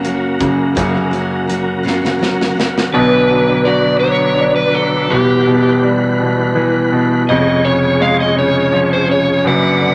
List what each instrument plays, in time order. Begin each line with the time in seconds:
Already playing: grand piano F#2 C#3 A#3, tonewheel organ C#3 F#3 A#3 F#4 A#4
0.03 steel-string acoustic guitar F#3 A#3 C#4 F#4, closed hi-hat
0.39 grand piano F#2 C#3 A#3, steel-string acoustic guitar F#3 A#3 C#4 F#4, kick, closed hi-hat
0.75 steel-string acoustic guitar F#2 C#3 F#3 A#3 C#4 F#4, grand piano F#2 C#3 A#3, kick, closed hi-hat
0.94 steel-string acoustic guitar F#3 A#3 C#4 F#4
1.11 steel-string acoustic guitar F#3 A#3 C#4 F#4, closed hi-hat
1.48 steel-string acoustic guitar F#3 A#3 C#4 F#4, closed hi-hat
1.83 steel-string acoustic guitar F#2 C#3 F#3 A#3 C#4 F#4
1.87 snare
2.01 steel-string acoustic guitar F#3 A#3 C#4 F#4, snare
2.19 steel-string acoustic guitar F#3 A#3 C#4 F#4, snare
2.41 snare
2.55 steel-string acoustic guitar F#3 A#3 C#4
2.59 steel-string acoustic guitar F#4, snare
2.78 snare
2.93 grand piano B1 B2, tonewheel organ D3 F#3 B3 D4 B4, electric slide guitar B4
3.31 grand piano F#3
3.65 grand piano F#4, electric slide guitar D5
4.00 grand piano F#3, electric slide guitar C#5
4.40 grand piano D4
4.56 electric slide guitar B4
4.74 grand piano F#3, electric slide guitar A4
5.10 grand piano E1 E2, tonewheel organ E3 G3 F#5, electric slide guitar G4
5.47 grand piano B2
5.82 grand piano G3
6.20 grand piano B2
6.55 grand piano E3
6.92 grand piano B2
7.29 grand piano F1 F2, tonewheel organ F3 G#3 C#4 G#4 C#5, electric slide guitar D#5
7.65 grand piano C#3, electric slide guitar C#5
8.00 grand piano G#3, electric slide guitar F5
8.20 electric slide guitar D#5
8.36 grand piano C#3, electric slide guitar C#5
8.72 grand piano F3
8.93 electric slide guitar C5
9.09 grand piano C#3, electric slide guitar C#5
9.44 grand piano F#1 F#2, tonewheel organ F#3 B3 D4 B4 D5, electric slide guitar F#5
9.80 grand piano D3